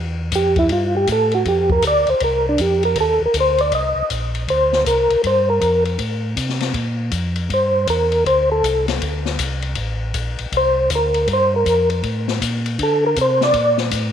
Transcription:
0.00 0.31 E2 medium
0.32 0.69 F2 medium
0.32 0.57 G4 medium
0.32 kick soft
0.32 hi-hat pedal medium
0.32 ride medium
0.56 0.71 E4 medium
0.56 kick soft
0.56 ride soft
0.69 1.07 G2 medium
0.69 0.95 F4 medium
0.69 kick soft
0.69 ride medium
0.96 1.09 G4 medium
1.07 1.45 A2 medium
1.07 kick soft
1.07 hi-hat pedal medium
1.07 ride medium
1.12 1.34 A4 loud
1.31 1.47 F#4 medium
1.31 ride soft
1.45 1.83 F2 medium
1.45 1.71 G4 medium
1.45 kick soft
1.45 ride medium
1.70 1.85 A#4 medium
1.70 kick medium
1.82 2.06 D2 medium
1.82 kick soft
1.82 hi-hat pedal medium
1.82 ride medium
1.87 2.09 D5 medium
2.07 2.15 D2 soft
2.07 2.22 C5 medium
2.07 ride soft
2.20 2.58 C2 medium
2.20 2.46 A#4 medium
2.20 kick soft
2.20 ride medium
2.49 2.61 D4 medium
2.58 2.96 F2 medium
2.58 2.84 G4 medium
2.58 kick soft
2.58 hi-hat pedal soft
2.58 ride medium
2.83 2.98 A#4 loud
2.83 ride soft
2.96 3.19 D#2 medium
2.96 kick soft
2.96 ride medium
3.01 3.22 A4 medium
3.20 3.28 D#2 soft
3.25 3.37 A#4 medium
3.34 3.71 D2 medium
3.34 kick soft
3.34 hi-hat pedal medium
3.34 ride medium
3.40 3.61 C5 medium
3.58 3.73 D5 loud
3.58 ride soft
3.72 3.94 C2 medium
3.72 4.09 D#5 medium
3.72 kick soft
3.72 ride medium
3.95 4.03 C2 soft
4.10 4.47 A#1 loud
4.10 kick soft
4.10 hi-hat pedal soft
4.10 ride medium
4.35 ride soft
4.48 4.85 D2 medium
4.48 4.84 C5 medium
4.48 kick soft
4.48 ride medium
4.73 snare soft
4.85 5.08 C2 medium
4.85 5.22 A#4 medium
4.85 kick soft
4.85 hi-hat pedal medium
4.85 ride medium
5.10 5.17 C2 soft
5.10 ride soft
5.23 5.60 G2 medium
5.23 5.49 C5 loud
5.23 kick soft
5.23 ride medium
5.50 5.84 A#4 loud
5.61 5.98 F2 loud
5.61 kick soft
5.61 hi-hat pedal soft
5.61 ride medium
5.85 ride soft
5.99 6.36 A2 medium
5.99 kick soft
5.99 ride medium
6.37 6.73 C3 medium
6.37 kick soft
6.37 hi-hat pedal medium
6.37 ride medium
6.49 snare soft
6.60 snare soft
6.60 ride soft
6.74 7.11 A#2 medium
6.74 kick soft
6.74 ride medium
7.11 7.49 F2 medium
7.11 kick soft
7.11 hi-hat pedal soft
7.11 ride medium
7.36 ride soft
7.50 7.87 G2 medium
7.50 kick soft
7.50 ride medium
7.54 7.87 C5 medium
7.87 8.24 E2 medium
7.87 8.24 A#4 medium
7.87 kick soft
7.87 hi-hat pedal medium
7.87 ride medium
8.12 ride soft
8.26 8.62 D2 medium
8.26 8.50 C5 loud
8.26 kick soft
8.26 ride medium
8.52 8.86 A4 medium
8.63 9.00 C2 medium
8.63 kick soft
8.63 hi-hat pedal soft
8.63 ride medium
8.88 snare medium
8.88 ride soft
9.02 9.38 D2 medium
9.02 kick soft
9.02 ride medium
9.26 snare soft
9.39 9.76 C2 medium
9.39 kick soft
9.39 hi-hat pedal medium
9.39 ride medium
9.62 ride soft
9.75 10.13 A1 medium
9.75 kick soft
9.75 ride medium
10.14 10.37 A#1 loud
10.14 kick soft
10.14 hi-hat pedal soft
10.14 ride medium
10.38 10.46 A#1 soft
10.38 ride soft
10.52 10.89 C2 medium
10.52 kick soft
10.52 ride medium
10.57 10.90 C5 loud
10.90 11.27 D2 medium
10.90 kick soft
10.90 hi-hat pedal medium
10.90 ride medium
10.95 11.28 A#4 medium
11.14 ride soft
11.27 11.64 G2 medium
11.27 kick soft
11.27 ride medium
11.33 11.54 C5 loud
11.56 11.89 A#4 medium
11.66 12.03 F2 loud
11.66 kick soft
11.66 hi-hat pedal medium
11.66 ride medium
11.90 ride soft
12.03 12.40 A2 medium
12.03 kick soft
12.03 ride medium
12.28 snare soft
12.42 12.78 A#2 medium
12.42 kick soft
12.42 hi-hat pedal medium
12.42 ride medium
12.66 ride medium
12.78 13.16 D3 medium
12.78 kick soft
12.78 ride medium
12.83 13.05 A4 medium
13.06 13.18 A#4 medium
13.16 13.54 C3 medium
13.16 kick soft
13.16 hi-hat pedal medium
13.16 ride medium
13.21 13.43 C5 medium
13.41 13.78 D5 loud
13.41 snare medium
13.54 13.91 A#2 medium
13.54 kick soft
13.54 ride medium
13.78 snare soft
13.91 14.12 A2 loud
13.91 kick soft
13.91 hi-hat pedal medium
13.91 ride medium

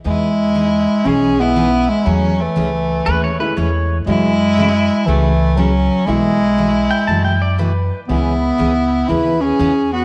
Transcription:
0.04 0.85 E2 medium
0.04 0.27 E3 medium
0.04 1.07 G#3 loud
0.04 0.28 B3 medium
0.04 0.28 D#4 medium
0.04 1.08 E4 medium
0.04 0.28 G#4 medium
0.55 0.67 E3 medium
0.55 0.67 B3 medium
0.55 0.67 D#4 medium
0.55 0.68 G#4 medium
1.05 1.86 B1 medium
1.05 1.28 E3 medium
1.05 1.28 B3 medium
1.05 1.41 C#4 loud
1.05 1.28 D#4 medium
1.05 1.28 G#4 medium
1.05 1.42 G#4 medium
1.39 2.03 E3 medium
1.39 2.03 G#3 medium
1.39 2.03 B3 medium
1.39 1.91 B3 loud
1.39 2.03 E4 medium
1.39 1.90 E4 medium
1.39 2.03 D#5 medium
1.56 1.68 E3 medium
1.56 1.68 B3 medium
1.56 1.68 D#4 medium
1.56 1.68 G#4 medium
1.90 2.08 G#3 medium
1.90 2.08 E4 medium
2.05 2.46 E2 medium
2.05 2.28 E3 medium
2.05 2.43 F#3 medium
2.05 2.28 A3 medium
2.05 2.42 C#4 medium
2.05 2.29 C#4 medium
2.05 2.29 G#4 medium
2.40 3.41 E3 medium
2.40 3.40 A3 medium
2.56 2.99 C#2 medium
2.56 2.68 E3 medium
2.56 2.68 A3 medium
2.56 2.68 C#4 medium
2.56 2.69 G#4 medium
3.06 3.49 D#2 medium
3.06 3.29 E3 medium
3.06 3.29 A3 medium
3.06 3.30 C#4 medium
3.06 3.30 G#4 medium
3.06 3.22 B4 loud
3.24 3.40 C#5 medium
3.39 4.03 E3 medium
3.39 4.03 G#3 medium
3.39 4.03 A3 medium
3.39 4.04 C#4 medium
3.39 4.04 E4 medium
3.39 3.56 B4 medium
3.57 4.00 E2 medium
3.57 3.69 E3 medium
3.57 3.69 A3 medium
3.57 3.69 C#4 medium
3.57 3.69 G#4 medium
3.57 3.97 C#5 medium
4.06 4.87 F#2 medium
4.06 4.29 C#3 medium
4.06 5.47 E3 medium
4.06 4.30 E3 medium
4.06 5.47 F#3 medium
4.06 5.07 G#3 loud
4.06 4.30 A3 medium
4.06 5.47 C#4 medium
4.06 4.30 C#4 medium
4.06 5.47 E4 medium
4.06 5.10 E4 loud
4.06 4.30 F#4 medium
4.57 4.69 C#3 medium
4.57 4.69 E3 medium
4.57 4.69 A3 medium
4.57 4.69 C#4 medium
4.57 4.70 F#4 medium
5.06 5.88 C#2 medium
5.06 5.30 C#3 medium
5.06 5.58 E3 medium
5.06 5.30 E3 medium
5.06 5.30 A3 medium
5.06 5.61 A3 medium
5.06 5.30 C#4 medium
5.06 5.30 F#4 medium
5.57 5.69 C#3 medium
5.57 5.69 E3 medium
5.57 6.08 F#3 medium
5.57 5.69 A3 medium
5.57 5.70 C#4 medium
5.57 6.10 C#4 medium
5.57 5.70 F#4 medium
6.07 6.88 B1 medium
6.07 6.30 B2 medium
6.07 6.37 E3 medium
6.07 6.30 E3 medium
6.07 6.37 F#3 medium
6.07 7.58 G#3 loud
6.07 6.37 A3 medium
6.07 6.31 A3 medium
6.07 6.37 B3 medium
6.07 6.38 E4 medium
6.07 7.59 E4 medium
6.07 6.31 E4 medium
6.07 6.31 F#4 medium
6.58 6.70 B2 medium
6.58 6.70 E3 medium
6.58 6.70 A3 medium
6.58 6.70 E4 medium
6.58 6.70 F#4 medium
6.91 7.07 G5 medium
7.07 7.89 F#2 medium
7.07 7.31 B2 medium
7.07 7.31 E3 medium
7.07 7.31 A3 medium
7.07 7.31 E4 medium
7.07 7.32 F#4 medium
7.07 7.24 A5 medium
7.25 7.41 G5 medium
7.42 7.58 D5 medium
7.58 7.70 B2 medium
7.58 7.71 E3 medium
7.58 7.71 A3 medium
7.58 7.71 E4 medium
7.58 7.71 F#4 medium
7.58 7.99 B4 medium
8.08 8.49 C#2 medium
8.08 9.49 C#3 medium
8.08 8.32 C#3 medium
8.08 8.32 E3 medium
8.08 9.49 G#3 medium
8.08 9.10 B3 medium
8.08 9.49 B3 medium
8.08 8.32 B3 medium
8.08 9.50 C#4 medium
8.08 8.32 C#4 medium
8.08 9.50 E4 medium
8.08 9.11 E4 medium
8.08 8.32 G#4 medium
8.58 9.02 C#2 medium
8.58 8.71 C#3 medium
8.58 8.71 E3 medium
8.58 8.71 B3 medium
8.58 8.71 C#4 medium
8.58 8.71 G#4 medium
9.08 9.52 D#2 medium
9.08 9.32 C#3 medium
9.08 9.32 E3 medium
9.08 9.32 B3 medium
9.08 9.32 C#4 medium
9.08 9.42 E4 medium
9.08 9.32 G#4 medium
9.08 9.43 B4 medium
9.41 9.92 C#4 medium
9.41 9.93 G#4 medium
9.59 10.02 E2 medium
9.59 9.71 C#3 medium
9.59 9.72 E3 medium
9.59 9.72 B3 medium
9.59 9.72 C#4 medium
9.59 9.72 G#4 medium
9.93 10.05 B3 medium
9.93 10.05 F#4 medium

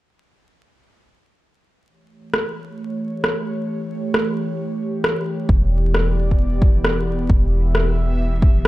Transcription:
1.89 8.68 E3 medium
1.89 5.46 A3 medium
1.89 8.68 G4 medium
1.89 5.46 C#5 medium
2.34 cross-stick medium
3.24 cross-stick medium
4.14 cross-stick loud
5.04 cross-stick loud
5.49 7.28 E1 medium
5.49 8.68 B3 medium
5.49 7.28 D5 medium
5.49 kick loud
5.94 cross-stick loud
6.31 kick medium
6.62 kick loud
6.85 cross-stick loud
7.29 8.65 E1 medium
7.29 8.68 E5 medium
7.29 kick loud
7.75 cross-stick loud
8.42 kick loud

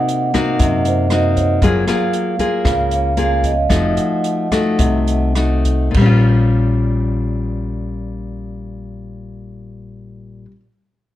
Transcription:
0.00 0.57 C3 soft
0.00 0.30 A#3 soft
0.00 0.30 D#4 soft
0.00 0.30 F#4 medium
0.00 0.63 D#5 medium
0.00 0.56 F#5 medium
0.09 closed hi-hat soft
0.34 1.06 A#3 medium
0.34 1.07 D#4 medium
0.34 1.07 F#4 medium
0.34 kick soft
0.34 cross-stick soft
0.34 closed hi-hat soft
0.59 1.58 F#2 medium
0.59 1.59 C3 soft
0.59 0.86 D#5 medium
0.59 kick medium
0.59 closed hi-hat medium
0.85 1.11 C5 medium
0.85 closed hi-hat soft
1.10 1.60 A#3 medium
1.10 1.60 D#4 medium
1.10 1.60 F#4 medium
1.10 1.37 D#5 medium
1.10 cross-stick soft
1.10 closed hi-hat soft
1.36 1.84 C#5 medium
1.36 kick soft
1.36 closed hi-hat soft
1.62 1.85 F#1 medium
1.62 2.62 F#3 soft
1.62 1.84 A#3 soft
1.62 1.84 F4 medium
1.62 1.84 G#4 medium
1.62 kick medium
1.62 closed hi-hat soft
1.88 2.35 A#3 medium
1.88 2.35 F4 medium
1.88 2.35 G#4 medium
1.88 2.61 F5 medium
1.88 cross-stick medium
1.88 closed hi-hat soft
2.13 closed hi-hat soft
2.39 3.13 A#3 medium
2.39 3.13 F4 medium
2.39 3.13 G#4 medium
2.39 kick soft
2.39 closed hi-hat soft
2.65 3.66 C#2 medium
2.65 3.67 C#3 soft
2.65 2.91 F5 medium
2.65 kick medium
2.65 cross-stick medium
2.65 closed hi-hat soft
2.91 3.17 C#5 medium
2.91 closed hi-hat soft
3.17 3.51 A#3 medium
3.17 3.51 F4 soft
3.17 3.51 G#4 medium
3.17 3.43 F5 medium
3.17 closed hi-hat soft
3.43 3.93 D#5 medium
3.43 kick soft
3.43 closed hi-hat soft
3.69 3.95 F1 medium
3.69 4.76 F3 medium
3.69 4.47 A3 soft
3.69 4.47 D#4 soft
3.69 4.47 F#4 soft
3.69 kick medium
3.69 cross-stick medium
3.69 closed hi-hat medium
3.97 4.75 F#5 soft
3.97 closed hi-hat soft
4.24 closed hi-hat soft
4.51 5.32 A3 medium
4.51 5.32 D#4 medium
4.51 5.32 F#4 medium
4.51 kick soft
4.51 cross-stick medium
4.51 closed hi-hat soft
4.78 5.91 C2 medium
4.78 5.90 C3 soft
4.78 kick medium
4.78 closed hi-hat medium
5.07 closed hi-hat soft
5.35 5.93 A3 soft
5.35 5.93 D#4 soft
5.35 5.93 F#4 medium
5.35 cross-stick soft
5.35 closed hi-hat soft
5.65 kick soft
5.65 closed hi-hat soft
5.91 10.45 A#1 medium
5.91 10.45 A#2 soft
5.91 kick medium
5.91 crash soft
5.97 10.51 G3 medium
6.01 10.55 C#4 medium
6.06 10.60 F4 medium

